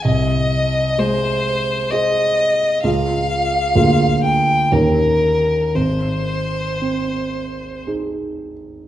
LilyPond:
<<
  \new Staff \with { instrumentName = "Violin" } { \time 3/4 \key aes \major \tempo 4 = 63 ees''4 c''4 ees''4 | f''4. g''8 bes'4 | c''2 r4 | }
  \new Staff \with { instrumentName = "Grand piano" } { \time 3/4 \key aes \major c,4 aes4 <aes' c''>4 | <des, aes f' aes'>4 <d, bes f' aes'>4 <ees, des' ees' g'>4 | aes,,4 c'4 <ees' aes'>4 | }
>>